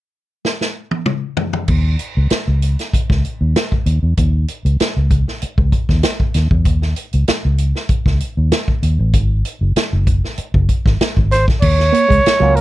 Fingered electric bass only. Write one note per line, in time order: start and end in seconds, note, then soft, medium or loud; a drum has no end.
1.68 1.96 D#2 medium
2.17 2.29 C#2 medium
2.31 muted fingered electric bass stroke soft
2.48 2.75 C#2 medium
2.94 muted fingered electric bass stroke soft
3.10 3.22 C#2 medium
3.41 3.53 D#2 medium
3.86 4.00 D#2 medium
4.03 4.15 E2 medium
4.18 4.45 D#2 medium
4.65 4.78 C#2 medium
4.97 5.23 C#2 medium
5.43 muted fingered electric bass stroke soft
5.58 5.71 C#2 medium
5.89 6.02 D#2 medium
6.35 6.49 D#2 medium
6.51 6.66 E2 medium
6.66 6.93 D#2 medium
7.14 7.26 C#2 medium
7.29 muted fingered electric bass stroke soft
7.45 7.72 C#2 medium
7.89 muted fingered electric bass stroke soft
8.06 8.19 C#2 medium
8.37 8.50 D#2 medium
8.83 8.97 D#2 medium
8.99 9.12 A1 medium
9.14 9.41 G#1 loud
9.61 9.74 F#1 medium
9.93 10.20 F#1 medium
10.38 muted fingered electric bass stroke soft
10.54 10.67 F#1 medium
10.86 10.99 G#1 medium
11.01 muted fingered electric bass stroke soft
11.17 11.44 G#1 loud
11.62 11.90 D#2 medium
12.11 12.23 C#2 medium
12.24 muted fingered electric bass stroke soft
12.41 12.61 C#2 medium